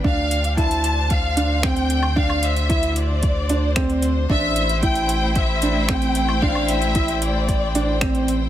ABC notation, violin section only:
X:1
M:4/4
L:1/8
Q:1/4=113
K:Dm
V:1 name="Violin section"
f2 a2 f2 g2 | f e2 d4 z | e2 g2 e2 g2 | f e2 d4 z |]